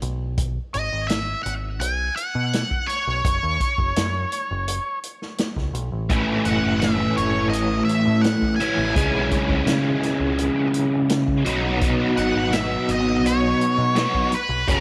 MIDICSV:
0, 0, Header, 1, 5, 480
1, 0, Start_track
1, 0, Tempo, 715137
1, 253, Time_signature, 4, 2, 24, 8
1, 9935, End_track
2, 0, Start_track
2, 0, Title_t, "Lead electric guitar"
2, 0, Program_c, 0, 29
2, 496, Note_on_c, 0, 75, 82
2, 718, Note_on_c, 0, 76, 85
2, 743, Note_off_c, 0, 75, 0
2, 950, Note_off_c, 0, 76, 0
2, 960, Note_on_c, 0, 78, 74
2, 1027, Note_off_c, 0, 78, 0
2, 1207, Note_on_c, 0, 80, 93
2, 1446, Note_off_c, 0, 80, 0
2, 1448, Note_on_c, 0, 78, 95
2, 1928, Note_on_c, 0, 73, 77
2, 1947, Note_off_c, 0, 78, 0
2, 3345, Note_off_c, 0, 73, 0
2, 4333, Note_on_c, 0, 78, 80
2, 4564, Note_on_c, 0, 76, 77
2, 4580, Note_off_c, 0, 78, 0
2, 4809, Note_off_c, 0, 76, 0
2, 4812, Note_on_c, 0, 73, 64
2, 5028, Note_off_c, 0, 73, 0
2, 5031, Note_on_c, 0, 75, 85
2, 5264, Note_off_c, 0, 75, 0
2, 5266, Note_on_c, 0, 76, 85
2, 5513, Note_on_c, 0, 78, 88
2, 5526, Note_off_c, 0, 76, 0
2, 5742, Note_off_c, 0, 78, 0
2, 5744, Note_on_c, 0, 80, 93
2, 7168, Note_off_c, 0, 80, 0
2, 8169, Note_on_c, 0, 78, 92
2, 8411, Note_on_c, 0, 76, 89
2, 8416, Note_off_c, 0, 78, 0
2, 8657, Note_off_c, 0, 76, 0
2, 8663, Note_on_c, 0, 75, 83
2, 8903, Note_off_c, 0, 75, 0
2, 8908, Note_on_c, 0, 73, 88
2, 9625, Note_on_c, 0, 71, 86
2, 9641, Note_off_c, 0, 73, 0
2, 9860, Note_off_c, 0, 71, 0
2, 9863, Note_on_c, 0, 69, 75
2, 9935, Note_off_c, 0, 69, 0
2, 9935, End_track
3, 0, Start_track
3, 0, Title_t, "Overdriven electric guitar"
3, 0, Program_c, 1, 29
3, 4091, Note_on_c, 1, 45, 82
3, 4095, Note_on_c, 1, 52, 79
3, 4099, Note_on_c, 1, 57, 79
3, 4101, Note_on_c, 1, 61, 83
3, 4109, Note_on_c, 1, 64, 87
3, 5755, Note_off_c, 1, 45, 0
3, 5757, Note_off_c, 1, 52, 0
3, 5759, Note_off_c, 1, 57, 0
3, 5760, Note_off_c, 1, 61, 0
3, 5764, Note_off_c, 1, 64, 0
3, 5773, Note_on_c, 1, 64, 78
3, 5778, Note_on_c, 1, 61, 77
3, 5783, Note_on_c, 1, 52, 66
3, 5783, Note_on_c, 1, 57, 73
3, 5787, Note_on_c, 1, 45, 63
3, 5997, Note_off_c, 1, 64, 0
3, 6000, Note_off_c, 1, 61, 0
3, 6002, Note_off_c, 1, 52, 0
3, 6002, Note_off_c, 1, 57, 0
3, 6004, Note_off_c, 1, 45, 0
3, 6010, Note_on_c, 1, 49, 86
3, 6019, Note_on_c, 1, 56, 80
3, 6021, Note_on_c, 1, 61, 83
3, 6025, Note_on_c, 1, 64, 90
3, 7674, Note_off_c, 1, 49, 0
3, 7678, Note_off_c, 1, 56, 0
3, 7679, Note_off_c, 1, 61, 0
3, 7681, Note_off_c, 1, 64, 0
3, 7682, Note_on_c, 1, 47, 88
3, 7686, Note_on_c, 1, 54, 95
3, 7690, Note_on_c, 1, 59, 99
3, 7698, Note_on_c, 1, 63, 100
3, 9352, Note_off_c, 1, 47, 0
3, 9354, Note_off_c, 1, 54, 0
3, 9356, Note_off_c, 1, 59, 0
3, 9360, Note_off_c, 1, 63, 0
3, 9367, Note_on_c, 1, 47, 75
3, 9369, Note_on_c, 1, 54, 74
3, 9376, Note_on_c, 1, 59, 76
3, 9381, Note_on_c, 1, 63, 71
3, 9594, Note_off_c, 1, 47, 0
3, 9596, Note_off_c, 1, 54, 0
3, 9599, Note_off_c, 1, 59, 0
3, 9601, Note_off_c, 1, 63, 0
3, 9850, Note_on_c, 1, 42, 77
3, 9852, Note_on_c, 1, 49, 88
3, 9857, Note_on_c, 1, 54, 91
3, 9860, Note_on_c, 1, 57, 91
3, 9863, Note_on_c, 1, 61, 101
3, 9935, Note_off_c, 1, 42, 0
3, 9935, Note_off_c, 1, 49, 0
3, 9935, Note_off_c, 1, 54, 0
3, 9935, Note_off_c, 1, 57, 0
3, 9935, Note_off_c, 1, 61, 0
3, 9935, End_track
4, 0, Start_track
4, 0, Title_t, "Picked electric bass"
4, 0, Program_c, 2, 34
4, 14, Note_on_c, 2, 35, 89
4, 385, Note_off_c, 2, 35, 0
4, 503, Note_on_c, 2, 32, 77
4, 592, Note_off_c, 2, 32, 0
4, 621, Note_on_c, 2, 32, 80
4, 896, Note_off_c, 2, 32, 0
4, 978, Note_on_c, 2, 32, 76
4, 1213, Note_off_c, 2, 32, 0
4, 1213, Note_on_c, 2, 35, 97
4, 1399, Note_off_c, 2, 35, 0
4, 1578, Note_on_c, 2, 47, 72
4, 1762, Note_off_c, 2, 47, 0
4, 2063, Note_on_c, 2, 35, 71
4, 2153, Note_off_c, 2, 35, 0
4, 2177, Note_on_c, 2, 30, 96
4, 2269, Note_off_c, 2, 30, 0
4, 2302, Note_on_c, 2, 39, 79
4, 2392, Note_off_c, 2, 39, 0
4, 2538, Note_on_c, 2, 30, 75
4, 2630, Note_off_c, 2, 30, 0
4, 2663, Note_on_c, 2, 42, 85
4, 2845, Note_off_c, 2, 42, 0
4, 3027, Note_on_c, 2, 30, 72
4, 3208, Note_off_c, 2, 30, 0
4, 3738, Note_on_c, 2, 37, 66
4, 3844, Note_off_c, 2, 37, 0
4, 3850, Note_on_c, 2, 35, 77
4, 3960, Note_off_c, 2, 35, 0
4, 3974, Note_on_c, 2, 33, 73
4, 4082, Note_off_c, 2, 33, 0
4, 4094, Note_on_c, 2, 33, 92
4, 4187, Note_off_c, 2, 33, 0
4, 4335, Note_on_c, 2, 30, 79
4, 4427, Note_off_c, 2, 30, 0
4, 4461, Note_on_c, 2, 30, 70
4, 4735, Note_off_c, 2, 30, 0
4, 4815, Note_on_c, 2, 30, 77
4, 5053, Note_off_c, 2, 30, 0
4, 5053, Note_on_c, 2, 33, 98
4, 5237, Note_off_c, 2, 33, 0
4, 5417, Note_on_c, 2, 45, 74
4, 5600, Note_off_c, 2, 45, 0
4, 5890, Note_on_c, 2, 33, 71
4, 5983, Note_off_c, 2, 33, 0
4, 6009, Note_on_c, 2, 37, 96
4, 6102, Note_off_c, 2, 37, 0
4, 6135, Note_on_c, 2, 35, 77
4, 6225, Note_off_c, 2, 35, 0
4, 6368, Note_on_c, 2, 37, 71
4, 6461, Note_off_c, 2, 37, 0
4, 6486, Note_on_c, 2, 49, 77
4, 6672, Note_off_c, 2, 49, 0
4, 6847, Note_on_c, 2, 37, 73
4, 7033, Note_off_c, 2, 37, 0
4, 7696, Note_on_c, 2, 35, 88
4, 8063, Note_off_c, 2, 35, 0
4, 8174, Note_on_c, 2, 32, 88
4, 8264, Note_off_c, 2, 32, 0
4, 8283, Note_on_c, 2, 32, 77
4, 8563, Note_off_c, 2, 32, 0
4, 8649, Note_on_c, 2, 32, 74
4, 8892, Note_off_c, 2, 32, 0
4, 8892, Note_on_c, 2, 35, 99
4, 9076, Note_off_c, 2, 35, 0
4, 9251, Note_on_c, 2, 47, 75
4, 9436, Note_off_c, 2, 47, 0
4, 9727, Note_on_c, 2, 35, 76
4, 9821, Note_off_c, 2, 35, 0
4, 9854, Note_on_c, 2, 30, 104
4, 9935, Note_off_c, 2, 30, 0
4, 9935, End_track
5, 0, Start_track
5, 0, Title_t, "Drums"
5, 12, Note_on_c, 9, 42, 55
5, 79, Note_off_c, 9, 42, 0
5, 252, Note_on_c, 9, 42, 76
5, 254, Note_on_c, 9, 36, 98
5, 319, Note_off_c, 9, 42, 0
5, 321, Note_off_c, 9, 36, 0
5, 496, Note_on_c, 9, 42, 54
5, 563, Note_off_c, 9, 42, 0
5, 734, Note_on_c, 9, 42, 76
5, 742, Note_on_c, 9, 38, 97
5, 801, Note_off_c, 9, 42, 0
5, 809, Note_off_c, 9, 38, 0
5, 978, Note_on_c, 9, 42, 57
5, 1045, Note_off_c, 9, 42, 0
5, 1215, Note_on_c, 9, 42, 79
5, 1282, Note_off_c, 9, 42, 0
5, 1457, Note_on_c, 9, 42, 59
5, 1524, Note_off_c, 9, 42, 0
5, 1700, Note_on_c, 9, 42, 79
5, 1708, Note_on_c, 9, 38, 95
5, 1767, Note_off_c, 9, 42, 0
5, 1775, Note_off_c, 9, 38, 0
5, 1819, Note_on_c, 9, 36, 71
5, 1886, Note_off_c, 9, 36, 0
5, 1942, Note_on_c, 9, 42, 52
5, 2009, Note_off_c, 9, 42, 0
5, 2179, Note_on_c, 9, 36, 102
5, 2179, Note_on_c, 9, 42, 79
5, 2246, Note_off_c, 9, 36, 0
5, 2246, Note_off_c, 9, 42, 0
5, 2418, Note_on_c, 9, 36, 68
5, 2419, Note_on_c, 9, 42, 57
5, 2486, Note_off_c, 9, 36, 0
5, 2487, Note_off_c, 9, 42, 0
5, 2538, Note_on_c, 9, 36, 71
5, 2605, Note_off_c, 9, 36, 0
5, 2659, Note_on_c, 9, 42, 84
5, 2667, Note_on_c, 9, 38, 101
5, 2726, Note_off_c, 9, 42, 0
5, 2734, Note_off_c, 9, 38, 0
5, 2898, Note_on_c, 9, 42, 62
5, 2965, Note_off_c, 9, 42, 0
5, 3139, Note_on_c, 9, 42, 86
5, 3206, Note_off_c, 9, 42, 0
5, 3379, Note_on_c, 9, 42, 61
5, 3446, Note_off_c, 9, 42, 0
5, 3504, Note_on_c, 9, 38, 31
5, 3571, Note_off_c, 9, 38, 0
5, 3613, Note_on_c, 9, 42, 81
5, 3621, Note_on_c, 9, 38, 95
5, 3680, Note_off_c, 9, 42, 0
5, 3688, Note_off_c, 9, 38, 0
5, 3734, Note_on_c, 9, 36, 67
5, 3744, Note_on_c, 9, 38, 30
5, 3802, Note_off_c, 9, 36, 0
5, 3811, Note_off_c, 9, 38, 0
5, 3857, Note_on_c, 9, 42, 58
5, 3924, Note_off_c, 9, 42, 0
5, 4091, Note_on_c, 9, 42, 71
5, 4092, Note_on_c, 9, 36, 95
5, 4158, Note_off_c, 9, 42, 0
5, 4159, Note_off_c, 9, 36, 0
5, 4329, Note_on_c, 9, 42, 54
5, 4396, Note_off_c, 9, 42, 0
5, 4574, Note_on_c, 9, 42, 70
5, 4582, Note_on_c, 9, 38, 100
5, 4641, Note_off_c, 9, 42, 0
5, 4649, Note_off_c, 9, 38, 0
5, 4815, Note_on_c, 9, 42, 56
5, 4882, Note_off_c, 9, 42, 0
5, 5056, Note_on_c, 9, 42, 74
5, 5123, Note_off_c, 9, 42, 0
5, 5296, Note_on_c, 9, 42, 56
5, 5363, Note_off_c, 9, 42, 0
5, 5531, Note_on_c, 9, 42, 74
5, 5539, Note_on_c, 9, 38, 90
5, 5598, Note_off_c, 9, 42, 0
5, 5606, Note_off_c, 9, 38, 0
5, 5652, Note_on_c, 9, 36, 68
5, 5720, Note_off_c, 9, 36, 0
5, 5773, Note_on_c, 9, 42, 56
5, 5840, Note_off_c, 9, 42, 0
5, 6012, Note_on_c, 9, 36, 91
5, 6014, Note_on_c, 9, 42, 75
5, 6079, Note_off_c, 9, 36, 0
5, 6081, Note_off_c, 9, 42, 0
5, 6250, Note_on_c, 9, 42, 56
5, 6252, Note_on_c, 9, 36, 70
5, 6317, Note_off_c, 9, 42, 0
5, 6319, Note_off_c, 9, 36, 0
5, 6371, Note_on_c, 9, 36, 68
5, 6439, Note_off_c, 9, 36, 0
5, 6490, Note_on_c, 9, 42, 82
5, 6498, Note_on_c, 9, 38, 103
5, 6557, Note_off_c, 9, 42, 0
5, 6565, Note_off_c, 9, 38, 0
5, 6733, Note_on_c, 9, 42, 61
5, 6742, Note_on_c, 9, 38, 33
5, 6801, Note_off_c, 9, 42, 0
5, 6809, Note_off_c, 9, 38, 0
5, 6970, Note_on_c, 9, 42, 78
5, 7037, Note_off_c, 9, 42, 0
5, 7208, Note_on_c, 9, 42, 62
5, 7275, Note_off_c, 9, 42, 0
5, 7446, Note_on_c, 9, 42, 84
5, 7454, Note_on_c, 9, 38, 106
5, 7513, Note_off_c, 9, 42, 0
5, 7521, Note_off_c, 9, 38, 0
5, 7570, Note_on_c, 9, 36, 72
5, 7637, Note_off_c, 9, 36, 0
5, 7691, Note_on_c, 9, 42, 64
5, 7758, Note_off_c, 9, 42, 0
5, 7928, Note_on_c, 9, 42, 78
5, 7932, Note_on_c, 9, 36, 102
5, 7996, Note_off_c, 9, 42, 0
5, 7999, Note_off_c, 9, 36, 0
5, 8171, Note_on_c, 9, 42, 54
5, 8238, Note_off_c, 9, 42, 0
5, 8407, Note_on_c, 9, 42, 77
5, 8415, Note_on_c, 9, 38, 101
5, 8474, Note_off_c, 9, 42, 0
5, 8482, Note_off_c, 9, 38, 0
5, 8649, Note_on_c, 9, 42, 59
5, 8716, Note_off_c, 9, 42, 0
5, 8898, Note_on_c, 9, 42, 76
5, 8965, Note_off_c, 9, 42, 0
5, 9135, Note_on_c, 9, 42, 60
5, 9202, Note_off_c, 9, 42, 0
5, 9370, Note_on_c, 9, 42, 66
5, 9378, Note_on_c, 9, 38, 93
5, 9437, Note_off_c, 9, 42, 0
5, 9445, Note_off_c, 9, 38, 0
5, 9493, Note_on_c, 9, 36, 71
5, 9560, Note_off_c, 9, 36, 0
5, 9610, Note_on_c, 9, 42, 59
5, 9677, Note_off_c, 9, 42, 0
5, 9852, Note_on_c, 9, 42, 72
5, 9854, Note_on_c, 9, 36, 99
5, 9920, Note_off_c, 9, 42, 0
5, 9921, Note_off_c, 9, 36, 0
5, 9935, End_track
0, 0, End_of_file